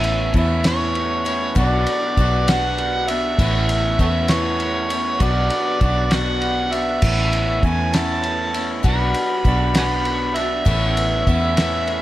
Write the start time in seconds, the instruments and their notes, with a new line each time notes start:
Already playing: fingered electric bass A1, steel-string acoustic guitar A2 E3 B3 C#4 E4, harmonium E4 B4 C#5 A5, harmonica E5
0.04 ride
0.34 fingered electric bass E2, steel-string acoustic guitar E3 B3 C#4 E4, kick, ride
0.38 harmonica E5
0.64 steel-string acoustic guitar A2 E3 B3 C#4 E4, harmonica C#5, snare, ride
0.95 ride
1.25 steel-string acoustic guitar B3 C#4 E4, ride
1.55 fingered electric bass B1, steel-string acoustic guitar B2 F#3 B3 D4 F#4, harmonium F#4 D5 B5, kick, ride
1.59 harmonica D5
1.87 ride
2.17 fingered electric bass B1, steel-string acoustic guitar F#3 B3 D4 F#4, kick, ride
2.48 steel-string acoustic guitar B2 F#3 B3 D4 F#4, harmonica F#5, snare, ride
2.78 ride
3.08 steel-string acoustic guitar B3 D4 F#4, harmonica E5, ride
3.38 fingered electric bass A1, steel-string acoustic guitar A2 E3 B3 C#4 E4, harmonium E4 C#5 A5, kick, ride
3.69 ride
3.99 fingered electric bass E2, steel-string acoustic guitar E3 B3 C#4 E4, harmonica A4 C#5 E5, kick, ride
4.28 steel-string acoustic guitar A2 E3 B3 C#4 E4, harmonica C#5, snare, ride
4.60 ride
4.90 steel-string acoustic guitar C#4 E4, ride
4.94 steel-string acoustic guitar B3
5.20 fingered electric bass B1, steel-string acoustic guitar B2 F#3 B3 D4 F#4, harmonium F#4 D5 B5, harmonica D5, kick, ride
5.50 ride
5.81 fingered electric bass B1, steel-string acoustic guitar F#3 B3 D4 F#4, kick, ride
6.11 steel-string acoustic guitar B2 F#3 B3 D4 F#4, harmonica F#5, snare, ride
6.42 ride
6.72 steel-string acoustic guitar B3 D4 F#4, harmonica E5, ride
7.02 fingered electric bass A1, steel-string acoustic guitar A2 E3 B3 C#4, harmonium A4 C#5 E5, kick, crash
7.06 steel-string acoustic guitar E4
7.33 ride
7.63 fingered electric bass E2, steel-string acoustic guitar E3 B3 C#4, harmonica G#5, kick, ride
7.67 steel-string acoustic guitar E4
7.93 steel-string acoustic guitar A2 E3 B3 C#4 E4, harmonica A5, snare, ride
8.24 ride
8.54 steel-string acoustic guitar B3 C#4 E4, ride
8.83 fingered electric bass B1, steel-string acoustic guitar B2 F#3 B3 D4 F#4, harmonium F#4 B4 D5, harmonica B5, kick, ride
9.14 ride
9.44 fingered electric bass B1, steel-string acoustic guitar F#3 B3 D4 F#4, kick, ride
9.75 steel-string acoustic guitar B2 F#3 B3 D4 F#4, harmonica F#5 G#5 B5, snare, ride
10.05 ride
10.36 steel-string acoustic guitar D4 F#4, harmonica E5, ride
10.41 steel-string acoustic guitar B3
10.65 fingered electric bass A1, steel-string acoustic guitar A2 E3 B3 C#4 E4, harmonium A4 C#5 E5, kick, ride
10.97 ride
11.26 fingered electric bass E2, steel-string acoustic guitar E3 B3 C#4 E4, harmonica E5, kick, ride
11.57 steel-string acoustic guitar A2 E3 B3 C#4 E4, snare, ride
11.87 ride